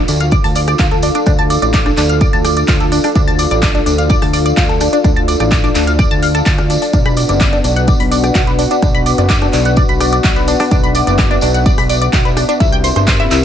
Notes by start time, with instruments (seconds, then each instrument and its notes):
Already playing: ambient pad D4 F4 A4 F5, analog synth pad F4 A4 D5
0.08 analog synth bass D2, synth arpeggio sound D4, open hi-hat, tambourine
0.20 synth arpeggio sound F5, closed hi-hat, tambourine
0.31 synth arpeggio sound D5, kick, closed hi-hat, tambourine
0.44 analog synth bass D2, synth arpeggio sound A5, open hi-hat, tambourine
0.55 synth arpeggio sound D5, open hi-hat, tambourine
0.67 synth arpeggio sound D5, cross-stick, closed hi-hat, tambourine
0.79 analog synth bass D2, synth arpeggio sound F4, kick, clap, closed hi-hat, tambourine
0.91 synth arpeggio sound A4, closed hi-hat, tambourine
1.02 synth arpeggio sound D4, open hi-hat, tambourine
1.14 synth arpeggio sound D4, closed hi-hat, tambourine
1.26 analog synth bass D2, synth arpeggio sound D4, kick, cross-stick, closed hi-hat, tambourine
1.39 synth arpeggio sound A5, closed hi-hat, tambourine
1.50 synth arpeggio sound D5, open hi-hat, tambourine
1.62 analog synth bass A1, synth arpeggio sound D5, closed hi-hat, tambourine
1.74 synth arpeggio sound D5, kick, clap, closed hi-hat, tambourine
1.86 synth arpeggio sound D4, cross-stick, closed hi-hat, tambourine
1.97 analog synth bass D2, synth arpeggio sound D4, clap, open hi-hat, tambourine
2.09 synth arpeggio sound F5, closed hi-hat, tambourine
2.21 synth arpeggio sound D5, kick, closed hi-hat, tambourine
2.33 analog synth bass D2, synth arpeggio sound A5, closed hi-hat, tambourine
2.45 synth arpeggio sound D5, cross-stick, open hi-hat, tambourine
2.57 synth arpeggio sound D5, closed hi-hat, tambourine
2.68 analog synth bass D2, synth arpeggio sound F4, kick, clap, closed hi-hat, tambourine
2.80 synth arpeggio sound A4, closed hi-hat, tambourine
2.92 synth arpeggio sound D4, open hi-hat, tambourine
3.04 synth arpeggio sound D4, cross-stick, open hi-hat, tambourine
3.15 analog synth bass D2, synth arpeggio sound D4, kick, closed hi-hat, tambourine
3.27 synth arpeggio sound A5, closed hi-hat, tambourine
3.39 synth arpeggio sound D5, open hi-hat, tambourine
3.51 analog synth bass A1, synth arpeggio sound D5, closed hi-hat, tambourine
3.62 synth arpeggio sound D5, kick, cross-stick, clap, closed hi-hat, tambourine
3.75 synth arpeggio sound D4, closed hi-hat, tambourine
3.86 analog synth bass D2, synth arpeggio sound D4, open hi-hat, tambourine
3.98 synth arpeggio sound F5, closed hi-hat, tambourine
4.09 synth arpeggio sound D5, kick, closed hi-hat, tambourine
4.22 analog synth bass D2, synth arpeggio sound A5, cross-stick, open hi-hat, tambourine
4.33 synth arpeggio sound D5, open hi-hat, tambourine
4.46 synth arpeggio sound D5, closed hi-hat, tambourine
4.57 analog synth bass D2, synth arpeggio sound F4, kick, clap, closed hi-hat, tambourine
4.69 synth arpeggio sound A4, closed hi-hat, tambourine
4.80 synth arpeggio sound D4, cross-stick, open hi-hat, tambourine
4.93 synth arpeggio sound D4, closed hi-hat, tambourine
5.04 analog synth bass D2, synth arpeggio sound D4, kick, closed hi-hat, tambourine
5.16 synth arpeggio sound A5, closed hi-hat, tambourine
5.28 synth arpeggio sound D5, open hi-hat, tambourine
5.40 analog synth bass A1, synth arpeggio sound D5, cross-stick, closed hi-hat, tambourine
5.52 synth arpeggio sound D5, kick, clap, closed hi-hat, tambourine
5.64 synth arpeggio sound D4, closed hi-hat, tambourine
5.75 analog synth bass D2, synth arpeggio sound D4, clap, open hi-hat, tambourine
5.87 synth arpeggio sound F5, closed hi-hat, tambourine
5.99 synth arpeggio sound D5, kick, cross-stick, closed hi-hat, tambourine
6.11 analog synth bass D2, synth arpeggio sound A5, closed hi-hat, tambourine
6.23 synth arpeggio sound F5, open hi-hat, tambourine
6.34 synth arpeggio sound A4, closed hi-hat, tambourine
6.46 analog synth bass D2, synth arpeggio sound A5, kick, clap, closed hi-hat, tambourine
6.58 synth arpeggio sound D4, cross-stick, closed hi-hat, tambourine
6.70 synth arpeggio sound D4, open hi-hat, tambourine
6.82 synth arpeggio sound D4, open hi-hat, tambourine
6.93 analog synth bass B1, analog synth pad B3 B4 F#5, synth arpeggio sound D4, kick, closed hi-hat, tambourine
7.01 ambient pad F#4 B4, tambourine
7.06 synth arpeggio sound B5, cross-stick, closed hi-hat
7.17 synth arpeggio sound D5, open hi-hat, tambourine
7.27 analog synth bass F#1, synth arpeggio sound D5, ambient pad F#5, closed hi-hat, tambourine
7.41 synth arpeggio sound D5, kick, clap, closed hi-hat, tambourine
7.53 synth arpeggio sound D4, closed hi-hat, tambourine
7.64 analog synth bass B1, synth arpeggio sound D4, open hi-hat, tambourine
7.76 synth arpeggio sound F#5, closed hi-hat, tambourine
7.87 synth arpeggio sound D5, kick, closed hi-hat, tambourine
8.00 analog synth bass B1, synth arpeggio sound B5, open hi-hat
8.11 synth arpeggio sound D5, open hi-hat, tambourine
8.24 synth arpeggio sound D5, cross-stick, closed hi-hat, tambourine
8.35 analog synth bass B1, synth arpeggio sound F#4, kick, clap, closed hi-hat, tambourine
8.47 synth arpeggio sound B4, closed hi-hat, tambourine
8.59 synth arpeggio sound D4, open hi-hat, tambourine
8.71 synth arpeggio sound D4, closed hi-hat, tambourine
8.82 analog synth bass B1, synth arpeggio sound D4, kick, cross-stick, closed hi-hat, tambourine
8.95 synth arpeggio sound B5, closed hi-hat, tambourine
9.06 synth arpeggio sound D5, open hi-hat, tambourine
9.18 analog synth bass F#1, synth arpeggio sound D5, closed hi-hat, tambourine
9.30 synth arpeggio sound D5, kick, clap, closed hi-hat, tambourine
9.42 synth arpeggio sound D4, cross-stick, closed hi-hat, tambourine
9.53 analog synth bass B1, synth arpeggio sound D4, clap, open hi-hat, tambourine
9.65 synth arpeggio sound F#5, closed hi-hat, tambourine
9.76 synth arpeggio sound D5, kick, closed hi-hat, tambourine
9.89 analog synth bass B1, synth arpeggio sound B5, closed hi-hat, tambourine
10.00 synth arpeggio sound D5, cross-stick, open hi-hat, tambourine
10.12 synth arpeggio sound D5, closed hi-hat, tambourine
10.24 analog synth bass B1, synth arpeggio sound F#4, ambient pad E5, kick, clap, closed hi-hat, tambourine
10.36 synth arpeggio sound B4, closed hi-hat, tambourine
10.48 synth arpeggio sound D4, open hi-hat, tambourine
10.60 synth arpeggio sound D4, cross-stick, open hi-hat, tambourine
10.71 analog synth bass B1, synth arpeggio sound D4, kick, closed hi-hat, tambourine
10.83 synth arpeggio sound B5, closed hi-hat, tambourine
10.95 synth arpeggio sound D5, open hi-hat, tambourine
11.07 analog synth bass F#1, synth arpeggio sound D5, closed hi-hat, tambourine
11.19 synth arpeggio sound D5, kick, cross-stick, clap, closed hi-hat, tambourine
11.31 synth arpeggio sound D4, closed hi-hat, tambourine
11.41 analog synth bass B1, synth arpeggio sound D4, open hi-hat, tambourine
11.54 synth arpeggio sound F#5, closed hi-hat, tambourine
11.66 synth arpeggio sound D5, kick, closed hi-hat, tambourine
11.78 analog synth bass B1, synth arpeggio sound B5, cross-stick, open hi-hat, tambourine
11.89 synth arpeggio sound D5, open hi-hat, tambourine
12.02 synth arpeggio sound D5, closed hi-hat, tambourine
12.13 analog synth bass B1, synth arpeggio sound F#4, kick, clap, closed hi-hat, tambourine
12.25 synth arpeggio sound B4, closed hi-hat, tambourine
12.37 synth arpeggio sound D4, cross-stick, open hi-hat, tambourine
12.49 synth arpeggio sound D4, closed hi-hat, tambourine
12.60 analog synth bass C2, ambient pad C4 G4, analog synth pad C4 G4 A#4 E5, synth arpeggio sound E4, kick, closed hi-hat, tambourine
12.72 synth arpeggio sound G5, closed hi-hat, tambourine
12.80 ambient pad A#4, synth arpeggio sound C5, tambourine
12.84 open hi-hat
12.96 analog synth bass G1, synth arpeggio sound C5, cross-stick, closed hi-hat, tambourine
13.07 synth arpeggio sound C5, kick, clap, closed hi-hat, tambourine
13.19 synth arpeggio sound E4, closed hi-hat, tambourine
13.31 analog synth bass C2, synth arpeggio sound E4, clap, open hi-hat, tambourine